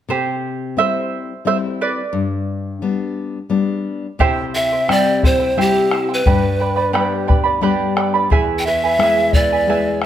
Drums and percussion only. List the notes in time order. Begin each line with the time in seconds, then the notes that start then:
4.20 bombo low
4.89 bombo rim
5.07 bombo rim
5.23 bombo low
5.58 bombo rim
5.91 bombo rim
6.26 bombo low
6.95 bombo rim
7.12 bombo rim
7.30 bombo low
7.63 bombo rim
7.97 bombo rim
8.31 bombo low
9.00 bombo rim
9.17 bombo rim
9.33 bombo low
9.68 bombo rim
10.02 bombo rim